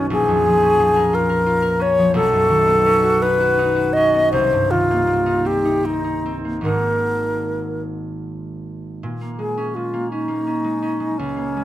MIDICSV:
0, 0, Header, 1, 3, 480
1, 0, Start_track
1, 0, Key_signature, -5, "minor"
1, 0, Tempo, 684932
1, 78, Time_signature, 6, 3, 24, 8
1, 1513, Tempo, 710900
1, 2473, Tempo, 751880
1, 3913, Tempo, 813008
1, 4873, Tempo, 781250
1, 5833, Tempo, 724638
1, 7565, End_track
2, 0, Start_track
2, 0, Title_t, "Alto flute"
2, 0, Program_c, 0, 73
2, 85, Note_on_c, 0, 68, 98
2, 804, Note_on_c, 0, 70, 87
2, 814, Note_off_c, 0, 68, 0
2, 1273, Note_on_c, 0, 73, 92
2, 1284, Note_off_c, 0, 70, 0
2, 1505, Note_off_c, 0, 73, 0
2, 1509, Note_on_c, 0, 69, 107
2, 2230, Note_on_c, 0, 71, 95
2, 2240, Note_off_c, 0, 69, 0
2, 2696, Note_on_c, 0, 75, 92
2, 2706, Note_off_c, 0, 71, 0
2, 2941, Note_off_c, 0, 75, 0
2, 2947, Note_on_c, 0, 72, 89
2, 3192, Note_on_c, 0, 65, 78
2, 3201, Note_off_c, 0, 72, 0
2, 3675, Note_on_c, 0, 67, 67
2, 3685, Note_off_c, 0, 65, 0
2, 3923, Note_on_c, 0, 63, 74
2, 3932, Note_off_c, 0, 67, 0
2, 4225, Note_off_c, 0, 63, 0
2, 4389, Note_on_c, 0, 70, 85
2, 5093, Note_off_c, 0, 70, 0
2, 6074, Note_on_c, 0, 68, 49
2, 6312, Note_on_c, 0, 65, 51
2, 6322, Note_off_c, 0, 68, 0
2, 6552, Note_off_c, 0, 65, 0
2, 6556, Note_on_c, 0, 63, 57
2, 7261, Note_on_c, 0, 61, 67
2, 7271, Note_off_c, 0, 63, 0
2, 7565, Note_off_c, 0, 61, 0
2, 7565, End_track
3, 0, Start_track
3, 0, Title_t, "Harp"
3, 0, Program_c, 1, 46
3, 0, Note_on_c, 1, 35, 59
3, 0, Note_on_c, 1, 42, 45
3, 0, Note_on_c, 1, 51, 45
3, 0, Note_on_c, 1, 59, 44
3, 0, Note_on_c, 1, 61, 56
3, 0, Note_on_c, 1, 63, 47
3, 0, Note_on_c, 1, 66, 53
3, 71, Note_on_c, 1, 34, 62
3, 89, Note_off_c, 1, 66, 0
3, 94, Note_off_c, 1, 63, 0
3, 95, Note_off_c, 1, 59, 0
3, 98, Note_off_c, 1, 42, 0
3, 98, Note_off_c, 1, 51, 0
3, 101, Note_off_c, 1, 35, 0
3, 195, Note_on_c, 1, 41, 48
3, 324, Note_on_c, 1, 53, 47
3, 432, Note_off_c, 1, 61, 0
3, 440, Note_on_c, 1, 61, 54
3, 547, Note_off_c, 1, 53, 0
3, 555, Note_on_c, 1, 53, 51
3, 674, Note_on_c, 1, 70, 54
3, 792, Note_on_c, 1, 65, 56
3, 899, Note_off_c, 1, 70, 0
3, 907, Note_on_c, 1, 70, 49
3, 1017, Note_off_c, 1, 65, 0
3, 1026, Note_on_c, 1, 65, 51
3, 1128, Note_off_c, 1, 70, 0
3, 1136, Note_on_c, 1, 70, 53
3, 1250, Note_off_c, 1, 61, 0
3, 1258, Note_on_c, 1, 61, 51
3, 1384, Note_off_c, 1, 53, 0
3, 1392, Note_on_c, 1, 53, 46
3, 1499, Note_on_c, 1, 35, 66
3, 1524, Note_off_c, 1, 70, 0
3, 1528, Note_off_c, 1, 65, 0
3, 1529, Note_off_c, 1, 34, 0
3, 1529, Note_off_c, 1, 41, 0
3, 1532, Note_off_c, 1, 53, 0
3, 1623, Note_on_c, 1, 42, 42
3, 1739, Note_on_c, 1, 51, 44
3, 1856, Note_on_c, 1, 59, 51
3, 1979, Note_off_c, 1, 61, 0
3, 1987, Note_on_c, 1, 61, 47
3, 2105, Note_on_c, 1, 66, 56
3, 2230, Note_on_c, 1, 63, 50
3, 2344, Note_off_c, 1, 66, 0
3, 2352, Note_on_c, 1, 66, 53
3, 2469, Note_off_c, 1, 63, 0
3, 2477, Note_on_c, 1, 63, 54
3, 2574, Note_off_c, 1, 66, 0
3, 2581, Note_on_c, 1, 66, 53
3, 2710, Note_off_c, 1, 61, 0
3, 2718, Note_on_c, 1, 61, 57
3, 2825, Note_off_c, 1, 59, 0
3, 2833, Note_on_c, 1, 59, 44
3, 2948, Note_on_c, 1, 36, 64
3, 2959, Note_off_c, 1, 35, 0
3, 2960, Note_off_c, 1, 51, 0
3, 2962, Note_off_c, 1, 42, 0
3, 2962, Note_off_c, 1, 66, 0
3, 2969, Note_off_c, 1, 59, 0
3, 2972, Note_off_c, 1, 61, 0
3, 3077, Note_on_c, 1, 43, 46
3, 3195, Note_on_c, 1, 51, 45
3, 3320, Note_on_c, 1, 58, 48
3, 3425, Note_on_c, 1, 60, 46
3, 3537, Note_off_c, 1, 63, 0
3, 3545, Note_on_c, 1, 63, 47
3, 3658, Note_off_c, 1, 60, 0
3, 3665, Note_on_c, 1, 60, 43
3, 3786, Note_off_c, 1, 63, 0
3, 3794, Note_on_c, 1, 63, 41
3, 3905, Note_off_c, 1, 60, 0
3, 3912, Note_on_c, 1, 60, 45
3, 4027, Note_off_c, 1, 63, 0
3, 4034, Note_on_c, 1, 63, 42
3, 4154, Note_off_c, 1, 60, 0
3, 4161, Note_on_c, 1, 60, 48
3, 4266, Note_off_c, 1, 58, 0
3, 4273, Note_on_c, 1, 58, 38
3, 4368, Note_off_c, 1, 51, 0
3, 4370, Note_on_c, 1, 44, 47
3, 4375, Note_on_c, 1, 51, 36
3, 4376, Note_off_c, 1, 58, 0
3, 4383, Note_off_c, 1, 60, 0
3, 4383, Note_on_c, 1, 58, 36
3, 4389, Note_off_c, 1, 63, 0
3, 4390, Note_on_c, 1, 60, 36
3, 4392, Note_on_c, 1, 32, 46
3, 4398, Note_on_c, 1, 63, 38
3, 4410, Note_off_c, 1, 36, 0
3, 4414, Note_off_c, 1, 43, 0
3, 5837, Note_on_c, 1, 46, 41
3, 5841, Note_off_c, 1, 44, 0
3, 5844, Note_off_c, 1, 51, 0
3, 5853, Note_off_c, 1, 60, 0
3, 5855, Note_off_c, 1, 32, 0
3, 5856, Note_off_c, 1, 63, 0
3, 5949, Note_off_c, 1, 58, 0
3, 5957, Note_on_c, 1, 58, 32
3, 6073, Note_on_c, 1, 56, 28
3, 6197, Note_on_c, 1, 61, 35
3, 6313, Note_off_c, 1, 56, 0
3, 6321, Note_on_c, 1, 56, 30
3, 6429, Note_off_c, 1, 58, 0
3, 6436, Note_on_c, 1, 58, 35
3, 6549, Note_off_c, 1, 61, 0
3, 6557, Note_on_c, 1, 61, 34
3, 6656, Note_off_c, 1, 58, 0
3, 6664, Note_on_c, 1, 58, 35
3, 6780, Note_off_c, 1, 61, 0
3, 6788, Note_on_c, 1, 61, 33
3, 6897, Note_off_c, 1, 56, 0
3, 6905, Note_on_c, 1, 56, 34
3, 7016, Note_off_c, 1, 61, 0
3, 7024, Note_on_c, 1, 61, 35
3, 7134, Note_off_c, 1, 56, 0
3, 7142, Note_on_c, 1, 56, 33
3, 7269, Note_on_c, 1, 37, 42
3, 7289, Note_off_c, 1, 46, 0
3, 7375, Note_off_c, 1, 58, 0
3, 7383, Note_on_c, 1, 58, 33
3, 7508, Note_off_c, 1, 56, 0
3, 7516, Note_on_c, 1, 56, 32
3, 7565, Note_off_c, 1, 37, 0
3, 7565, Note_off_c, 1, 56, 0
3, 7565, Note_off_c, 1, 58, 0
3, 7565, Note_off_c, 1, 61, 0
3, 7565, End_track
0, 0, End_of_file